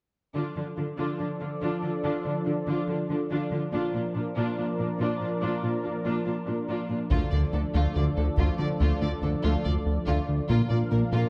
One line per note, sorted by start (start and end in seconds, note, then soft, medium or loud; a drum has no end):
0.34 0.43 D3 soft
0.34 3.69 F3 medium
0.34 3.69 D4 medium
0.34 0.54 D4 soft
0.34 0.54 F4 soft
0.34 3.69 A4 medium
0.34 3.69 D5 medium
0.56 0.64 D3 soft
0.56 0.64 D4 soft
0.56 0.64 F4 soft
0.77 0.85 D3 soft
0.77 0.85 D4 soft
0.77 0.85 F4 soft
0.97 1.06 D3 soft
0.97 1.18 D4 soft
0.97 1.17 F4 soft
1.18 1.28 D3 soft
1.18 1.27 D4 soft
1.18 1.26 F4 soft
1.40 1.49 D3 soft
1.40 1.48 D4 soft
1.40 1.48 F4 soft
1.62 1.70 D3 soft
1.62 1.81 D4 soft
1.62 1.81 F4 soft
1.83 1.91 D3 soft
1.83 1.91 D4 soft
1.83 1.91 F4 soft
2.04 2.12 D3 soft
2.04 2.23 D4 soft
2.04 2.24 F4 soft
2.25 2.33 D3 soft
2.25 2.33 D4 soft
2.25 2.33 F4 soft
2.46 2.54 D3 soft
2.46 2.54 D4 soft
2.46 2.54 F4 soft
2.67 2.75 D3 soft
2.67 2.87 D4 soft
2.67 2.87 F4 soft
2.88 2.96 D3 soft
2.88 2.97 D4 soft
2.88 2.97 F4 soft
3.09 3.17 D3 soft
3.09 3.18 D4 soft
3.09 3.19 F4 soft
3.30 3.38 D3 soft
3.30 3.51 D4 soft
3.30 3.51 F4 soft
3.51 3.59 D3 soft
3.51 3.61 D4 soft
3.51 3.61 F4 soft
3.72 3.80 A#2 soft
3.72 7.07 F3 medium
3.72 3.93 D4 soft
3.72 7.07 D4 medium
3.72 3.93 F4 soft
3.72 7.11 A#4 medium
3.72 7.07 D5 medium
3.94 4.02 A#2 soft
3.94 4.03 D4 soft
3.94 4.03 F4 soft
4.15 4.23 A#2 soft
4.15 4.23 D4 soft
4.15 4.23 F4 soft
4.36 4.45 A#2 medium
4.36 4.56 D4 medium
4.36 4.56 F4 medium
4.58 4.66 A#2 soft
4.58 4.66 D4 soft
4.58 4.66 F4 soft
4.79 4.87 A#2 soft
4.79 4.88 D4 soft
4.79 4.87 F4 soft
5.00 5.08 A#2 medium
5.00 5.20 D4 medium
5.00 5.20 F4 soft
5.21 5.29 A#2 soft
5.21 5.29 D4 soft
5.21 5.29 F4 soft
5.42 5.50 A#2 medium
5.42 5.62 D4 medium
5.42 5.61 F4 medium
5.63 5.71 A#2 soft
5.63 5.71 D4 soft
5.63 5.71 F4 soft
5.84 5.93 A#2 soft
5.84 5.92 D4 soft
5.84 5.92 F4 soft
6.04 6.14 A#2 medium
6.04 6.25 D4 soft
6.04 6.24 F4 medium
6.25 6.34 A#2 soft
6.25 6.34 D4 soft
6.25 6.33 F4 soft
6.47 6.55 A#2 soft
6.47 6.55 D4 soft
6.47 6.55 F4 soft
6.68 6.76 A#2 soft
6.68 6.88 D4 soft
6.68 6.88 F4 soft
6.90 6.98 A#2 soft
6.90 6.98 D4 soft
6.90 6.98 F4 soft
7.11 7.24 D2 medium
7.11 7.19 D2 soft
7.11 7.19 D3 soft
7.11 10.45 F3 medium
7.11 7.31 A3 soft
7.11 10.45 D4 medium
7.11 7.31 F4 medium
7.11 10.45 A4 medium
7.11 10.45 D5 medium
7.11 taiko soft
7.32 7.45 D2 soft
7.32 7.41 D3 soft
7.32 7.40 A3 soft
7.32 7.40 F4 soft
7.32 7.40 D5 soft
7.53 7.66 D2 soft
7.53 7.62 D2 soft
7.53 7.61 D3 soft
7.53 7.62 A3 soft
7.53 7.62 D4 soft
7.53 7.61 A4 soft
7.74 7.87 D2 medium
7.74 7.82 D3 soft
7.74 7.94 A3 soft
7.74 7.94 F4 soft
7.96 8.04 D2 soft
7.96 8.08 D2 soft
7.96 8.04 D3 soft
7.96 8.04 A3 soft
7.96 8.04 F4 soft
7.96 8.04 D5 soft
8.17 8.30 D2 soft
8.17 8.25 D3 soft
8.17 8.25 A3 soft
8.17 8.25 D4 soft
8.17 8.25 A4 soft
8.38 8.50 D2 medium
8.38 8.46 D2 soft
8.38 8.46 D3 soft
8.38 8.58 A3 soft
8.38 8.57 F4 soft
8.38 taiko soft
8.58 8.72 D3 soft
8.58 8.68 D3 soft
8.58 8.67 A3 soft
8.58 8.67 F4 soft
8.58 8.66 D5 soft
8.80 8.93 D2 medium
8.80 8.89 D2 soft
8.80 8.89 D3 soft
8.80 9.00 A3 soft
8.80 9.00 F4 soft
9.01 9.14 D2 soft
9.01 9.09 D3 soft
9.01 9.09 A3 soft
9.01 9.09 F4 soft
9.01 9.10 D5 soft
9.23 9.31 D2 soft
9.23 9.35 D2 soft
9.23 9.31 D3 soft
9.23 9.31 A3 soft
9.23 9.31 D4 soft
9.23 9.31 A4 soft
9.43 9.57 D2 medium
9.43 9.52 D3 soft
9.43 9.63 A3 soft
9.43 9.63 F4 soft
9.65 9.78 D2 soft
9.65 9.74 D2 soft
9.65 9.73 D3 soft
9.65 9.73 A3 soft
9.65 9.73 F4 soft
9.65 9.73 D5 soft
9.86 9.99 D2 soft
10.06 10.20 D2 medium
10.06 10.16 D2 medium
10.06 10.15 D3 soft
10.06 10.27 A3 soft
10.06 10.26 F4 soft
10.29 10.41 D2 soft
10.48 10.59 A#1 medium
10.48 10.57 A#2 soft
10.48 10.62 A#2 medium
10.48 11.29 F3 medium
10.48 10.69 A#3 soft
10.48 11.29 D4 medium
10.48 10.69 F4 medium
10.48 11.29 A#4 medium
10.48 11.29 F5 medium
10.69 10.83 A#2 soft
10.69 10.79 A#2 soft
10.69 10.79 A#3 soft
10.69 10.79 F4 soft
10.69 10.77 D5 soft
10.91 11.00 A#1 soft
10.91 10.99 A#2 soft
10.91 11.04 A#2 medium
10.91 11.01 A#3 soft
10.91 11.00 D4 soft
10.91 10.99 A#4 soft
11.12 11.25 A#2 medium
11.12 11.21 A#2 medium
11.12 11.29 A#3 medium
11.12 11.29 F4 soft